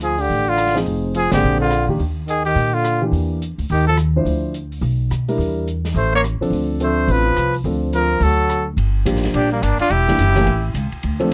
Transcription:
0.00 0.27 D2 medium
0.00 0.21 F3 medium
0.00 0.22 G#4 medium
0.00 closed hi-hat soft
0.18 0.47 D3 medium
0.18 0.50 G4 medium
0.18 open hi-hat soft
0.30 0.84 A1 medium
0.30 open hi-hat soft
0.47 0.76 D3 medium
0.47 0.77 F4 medium
0.58 cross-stick medium
0.58 closed hi-hat medium
0.67 snare soft
0.74 1.12 F3 medium
0.74 1.12 C4 medium
0.74 1.13 D#4 medium
0.74 1.13 G#4 medium
0.74 snare soft
0.74 open hi-hat soft
0.85 1.29 F1 medium
0.85 open hi-hat soft
1.15 1.32 F3 medium
1.15 1.32 G#4 medium
1.15 closed hi-hat soft
1.31 1.42 G#1 medium
1.31 1.69 D3 medium
1.31 1.59 D3 medium
1.31 1.69 A#3 medium
1.31 1.69 C4 medium
1.31 1.59 G4 medium
1.31 1.70 G#4 medium
1.31 snare medium
1.31 ride medium
1.43 1.86 A#1 medium
1.61 1.87 D3 medium
1.61 1.87 F4 medium
1.71 cross-stick medium
1.71 closed hi-hat soft
1.88 1.98 A#2 medium
1.88 1.99 D#3 medium
1.88 1.99 A#3 medium
1.88 1.99 D4 medium
1.88 1.99 G4 medium
1.99 2.53 D#2 medium
1.99 open hi-hat soft
2.28 2.44 D#3 medium
2.28 2.45 G#4 medium
2.28 closed hi-hat medium
2.45 2.76 D#3 medium
2.45 2.75 G4 medium
2.45 open hi-hat soft
2.55 3.10 A#2 medium
2.55 open hi-hat soft
2.74 3.02 D3 medium
2.74 3.02 F4 medium
2.84 cross-stick medium
2.84 closed hi-hat soft
3.01 3.39 E3 medium
3.01 3.39 A#3 soft
3.01 3.39 D4 medium
3.01 3.39 G4 medium
3.12 3.55 E2 medium
3.12 open hi-hat soft
3.42 closed hi-hat soft
3.58 3.69 D2 medium
3.58 open hi-hat soft
3.69 4.23 D#2 medium
3.69 3.87 D#3 medium
3.69 3.87 G4 medium
3.69 open hi-hat soft
3.87 3.98 F3 medium
3.87 3.97 A4 medium
3.97 cross-stick medium
3.97 closed hi-hat soft
4.16 4.53 F3 medium
4.16 4.53 D4 medium
4.16 4.53 E4 medium
4.16 4.53 C5 medium
4.25 4.79 D2 medium
4.25 open hi-hat soft
4.54 closed hi-hat soft
4.72 open hi-hat soft
4.81 5.08 B1 medium
4.81 open hi-hat soft
5.10 5.37 B2 medium
5.10 cross-stick medium
5.10 closed hi-hat soft
5.28 5.65 G3 medium
5.28 5.65 D4 medium
5.28 5.65 E4 medium
5.28 5.65 A#4 medium
5.28 open hi-hat soft
5.38 5.92 E2 medium
5.38 open hi-hat soft
5.68 closed hi-hat soft
5.85 snare soft
5.85 open hi-hat soft
5.94 6.37 A1 medium
5.94 6.12 A3 medium
5.94 6.13 C5 medium
5.94 open hi-hat soft
6.15 6.24 A#3 medium
6.15 6.21 C#5 medium
6.24 cross-stick medium
6.24 closed hi-hat soft
6.41 6.78 F3 medium
6.41 6.78 C4 medium
6.41 6.78 D4 medium
6.41 6.78 A4 medium
6.41 muted upright bass stroke soft
6.41 open hi-hat soft
6.50 7.05 D2 medium
6.50 open hi-hat soft
6.80 7.22 F3 medium
6.80 7.13 A3 medium
6.80 7.22 C4 medium
6.80 7.22 D4 medium
6.80 7.23 A4 medium
6.80 7.13 C5 medium
6.80 closed hi-hat soft
7.08 7.34 A1 medium
7.08 7.55 B4 medium
7.08 open hi-hat soft
7.12 7.56 F3 medium
7.36 7.63 C2 medium
7.36 cross-stick medium
7.36 closed hi-hat soft
7.54 open hi-hat soft
7.64 8.18 D2 medium
7.64 8.07 F3 medium
7.64 8.07 C4 soft
7.64 8.07 D4 soft
7.64 8.07 A4 medium
7.64 open hi-hat soft
7.93 8.25 F3 medium
7.93 8.24 A#4 medium
7.93 closed hi-hat medium
8.20 8.74 D2 medium
8.20 8.68 F#3 medium
8.20 8.67 A4 medium
8.20 open hi-hat soft
8.50 cross-stick medium
8.50 closed hi-hat soft
8.77 9.04 G1 medium
8.77 ride medium
9.05 9.33 A1 medium
9.05 9.48 F3 medium
9.05 9.48 G3 medium
9.05 9.48 A#3 medium
9.05 9.48 D4 medium
9.05 9.48 G4 medium
9.05 hi-hat pedal medium
9.05 ride medium
9.16 snare soft
9.24 snare soft
9.24 ride soft
9.34 9.61 A#1 medium
9.34 9.51 D4 medium
9.34 9.51 G4 medium
9.34 ride medium
9.52 9.65 G3 soft
9.52 9.64 A#3 medium
9.62 9.78 G1 medium
9.62 9.80 A#3 medium
9.62 9.80 D4 medium
9.62 hi-hat pedal soft
9.62 ride medium
9.79 9.94 D4 medium
9.79 9.92 F4 medium
9.79 muted upright bass stroke soft
9.79 ride soft
9.90 10.18 E1 medium
9.90 10.76 E4 medium
9.90 10.75 G4 medium
9.90 ride soft
10.08 10.18 E3 medium
10.08 10.18 G3 medium
10.08 10.17 A#3 medium
10.08 10.18 D4 medium
10.08 10.18 G4 medium
10.08 snare soft
10.18 10.46 F#1 medium
10.18 hi-hat pedal medium
10.18 ride medium
10.36 10.45 E3 medium
10.36 10.46 A3 medium
10.36 10.46 A#3 medium
10.36 10.46 C#4 medium
10.36 10.46 G4 medium
10.36 snare soft
10.36 ride soft
10.47 10.74 A1 medium
10.47 ride soft
10.74 10.91 C#2 medium
10.74 hi-hat pedal medium
10.74 ride medium
10.92 muted upright bass stroke soft
10.92 ride soft
11.03 11.31 D2 medium
11.03 ride medium
11.20 11.30 F3 medium
11.20 11.30 A3 medium
11.20 11.30 C4 medium
11.20 11.30 D4 medium
11.20 11.30 A4 medium
11.20 ride soft

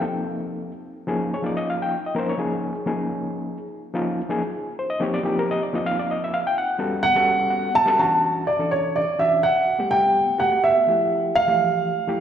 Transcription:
0.00 0.71 F3 medium
0.00 0.71 A#3 medium
0.00 0.71 C4 medium
0.00 0.71 D#4 medium
0.00 0.71 A4 medium
1.07 1.34 F3 medium
1.07 1.34 A#3 medium
1.07 1.34 C#4 medium
1.07 1.34 D#4 medium
1.07 1.35 G#4 medium
1.34 1.44 C#5 medium
1.43 1.96 F3 medium
1.43 1.96 A#3 medium
1.43 1.96 C#4 medium
1.43 1.96 D#4 medium
1.43 1.97 F4 medium
1.43 1.57 D5 medium
1.57 1.68 D#5 loud
1.70 1.80 F5 medium
1.82 2.04 G5 loud
2.06 2.16 D#5 medium
2.15 2.33 F3 medium
2.15 2.33 A#3 medium
2.15 2.33 C#4 medium
2.15 2.33 D#4 medium
2.15 2.33 A#4 medium
2.15 2.29 C5 medium
2.29 3.67 C#5 medium
2.38 2.74 F3 medium
2.38 2.74 A#3 medium
2.38 2.74 C#4 medium
2.38 2.74 D#4 medium
2.38 2.74 G#4 medium
2.86 3.56 F3 medium
2.86 3.57 A#3 medium
2.86 3.57 C#4 medium
2.86 3.57 D#4 medium
2.86 3.57 G#4 medium
3.94 4.20 F3 medium
3.94 4.20 A#3 medium
3.94 4.20 C#4 medium
3.94 4.21 D#4 medium
3.94 4.21 F4 loud
4.29 4.41 F3 medium
4.29 4.42 A#3 medium
4.29 4.42 C#4 medium
4.29 4.42 D#4 medium
4.29 4.42 G#4 loud
4.79 4.90 C5 medium
4.90 5.01 D#5 loud
5.00 5.18 F3 medium
5.00 5.18 A#3 medium
5.00 5.18 C4 medium
5.00 5.19 D#4 medium
5.00 5.19 G4 medium
5.00 5.14 C#5 medium
5.14 5.25 D5 loud
5.23 5.59 F3 medium
5.23 5.59 A#3 medium
5.23 5.60 C4 medium
5.23 5.60 D#4 medium
5.23 5.60 G4 medium
5.28 5.38 F4 medium
5.39 5.49 A#4 loud
5.51 5.61 D#5 loud
5.63 5.73 D5 medium
5.73 6.43 F3 medium
5.73 6.43 A#3 medium
5.73 6.43 C4 medium
5.73 6.43 D#4 medium
5.73 6.44 F4 medium
5.73 5.86 D#5 medium
5.86 5.97 F5 loud
5.99 6.09 D5 loud
6.11 6.21 D#5 medium
6.24 6.34 E5 medium
6.34 6.45 F5 loud
6.47 6.57 G5 loud
6.58 7.49 F#5 loud
6.79 7.06 G3 medium
6.79 7.06 B3 medium
6.79 7.06 C#4 medium
6.79 7.06 F#4 medium
6.79 7.06 A4 medium
7.03 7.71 F#5 loud
7.15 7.68 G3 medium
7.15 7.69 B3 medium
7.15 7.69 C#4 medium
7.15 7.69 F#4 medium
7.15 7.69 A4 loud
7.50 7.73 F#5 medium
7.75 7.97 E5 medium
7.75 7.98 A5 loud
7.86 7.99 G3 loud
7.86 7.99 B3 medium
7.86 7.98 C#4 medium
7.86 7.99 F#4 medium
7.86 8.00 A4 loud
7.99 8.43 E3 medium
7.99 8.43 C#4 medium
7.99 8.43 D4 medium
7.99 8.44 F#4 medium
7.99 8.49 A5 medium
8.47 8.72 D5 medium
8.59 9.03 E3 medium
8.59 9.04 C#4 medium
8.59 9.04 D4 medium
8.59 9.04 A4 medium
8.71 8.96 C#5 medium
8.96 9.20 D5 medium
9.19 9.43 E3 medium
9.19 9.43 C#4 medium
9.19 9.44 D4 medium
9.19 9.44 F#4 medium
9.19 9.44 E5 medium
9.43 9.93 F#5 medium
9.78 10.23 G3 medium
9.78 10.23 A3 medium
9.78 10.24 B3 medium
9.78 10.24 G4 medium
9.91 10.41 G5 medium
10.38 10.75 A3 medium
10.38 10.75 B3 medium
10.38 10.74 F#4 medium
10.38 10.75 G4 medium
10.38 10.64 F#5 medium
10.64 11.38 E5 medium
10.87 11.32 F3 medium
10.87 11.32 A3 medium
10.87 11.32 E4 medium
10.87 11.32 G4 medium
11.35 12.20 F5 loud
11.47 11.92 E3 medium
11.47 11.92 F3 medium
11.47 11.92 A3 medium
11.47 11.92 G4 medium
12.07 12.20 F3 medium
12.07 12.20 A3 medium
12.07 12.20 E4 medium
12.07 12.20 G4 medium

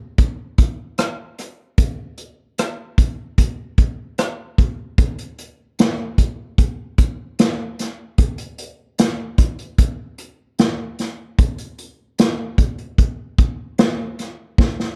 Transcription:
0.18 kick medium
0.18 closed hi-hat medium
0.58 kick medium
0.58 closed hi-hat medium
0.98 cross-stick medium
0.98 closed hi-hat medium
1.38 cross-stick soft
1.38 closed hi-hat medium
1.78 kick medium
1.78 closed hi-hat medium
2.18 closed hi-hat medium
2.58 cross-stick medium
2.58 closed hi-hat medium
2.98 kick medium
2.98 closed hi-hat medium
3.38 kick medium
3.38 closed hi-hat medium
3.78 kick medium
3.78 closed hi-hat soft
4.18 cross-stick medium
4.18 closed hi-hat medium
4.58 kick medium
4.58 cross-stick soft
4.58 closed hi-hat medium
4.98 kick medium
4.98 closed hi-hat medium
5.18 closed hi-hat soft
5.38 closed hi-hat medium
5.79 snare medium
5.79 closed hi-hat medium
6.18 kick medium
6.18 closed hi-hat medium
6.58 kick medium
6.58 closed hi-hat medium
6.98 kick medium
6.98 closed hi-hat medium
7.39 snare medium
7.39 closed hi-hat medium
7.79 snare soft
7.79 closed hi-hat medium
8.18 kick medium
8.18 closed hi-hat medium
8.38 closed hi-hat soft
8.58 closed hi-hat medium
8.98 snare medium
8.98 closed hi-hat medium
9.38 kick medium
9.38 closed hi-hat medium
9.59 closed hi-hat soft
9.78 kick medium
9.78 closed hi-hat medium
10.18 closed hi-hat medium
10.59 snare loud
10.59 closed hi-hat medium
10.99 snare soft
10.99 closed hi-hat medium
11.39 kick medium
11.39 closed hi-hat medium
11.58 closed hi-hat soft
11.78 closed hi-hat medium
12.18 snare medium
12.18 closed hi-hat medium
12.58 kick medium
12.58 closed hi-hat medium
12.78 closed hi-hat soft
12.98 kick medium
12.98 closed hi-hat medium
13.38 kick medium
13.38 closed hi-hat medium
13.78 snare loud
13.78 closed hi-hat medium
14.19 snare soft
14.19 closed hi-hat medium
14.58 kick loud
14.58 snare soft
14.80 snare soft

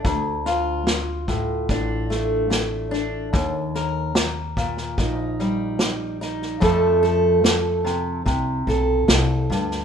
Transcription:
0.04 0.85 D2 medium
0.04 1.65 D2 loud
0.04 kick medium
0.04 snare soft
0.46 3.29 F4 medium
0.46 snare soft
0.87 muted steel-string acoustic guitar stroke medium
0.87 snare medium
1.28 2.49 A2 medium
1.28 kick medium
1.28 snare soft
1.69 3.29 A1 medium
1.69 2.90 D4 medium
1.69 kick medium
1.69 snare soft
2.10 3.28 A3 medium
2.10 snare soft
2.50 muted steel-string acoustic guitar stroke medium
2.50 snare medium
2.91 3.28 D4 medium
2.91 snare soft
3.33 4.15 D#2 medium
3.33 4.94 D#2 loud
3.33 kick medium
3.33 snare soft
3.75 6.57 A#4 medium
3.75 snare soft
4.15 muted steel-string acoustic guitar stroke medium
4.15 snare loud
4.57 5.79 A#2 medium
4.57 kick medium
4.57 snare soft
4.77 snare soft
4.98 6.58 A#1 medium
4.98 6.20 D#4 medium
4.98 kick medium
4.98 snare soft
5.39 6.62 G3 medium
5.39 snare soft
5.79 muted steel-string acoustic guitar stroke medium
5.79 snare medium
6.21 6.57 D#4 medium
6.21 snare soft
6.42 snare soft
6.60 7.43 F2 medium
6.60 8.22 F2 loud
6.60 8.21 F3 medium
6.60 8.21 A3 medium
6.60 7.02 A4 medium
6.60 kick loud
6.60 snare soft
7.03 8.21 A4 medium
7.03 snare soft
7.44 muted steel-string acoustic guitar stroke medium
7.44 snare medium
7.85 8.21 C3 medium
7.85 snare soft
8.26 8.65 C2 medium
8.26 9.07 C3 medium
8.26 kick medium
8.26 snare soft
8.67 9.04 B1 medium
8.67 9.85 A4 medium
8.67 snare soft
9.08 9.46 C2 medium
9.08 muted steel-string acoustic guitar stroke medium
9.08 snare medium
9.50 9.85 D2 medium
9.50 9.85 G2 medium
9.50 snare soft
9.71 snare soft

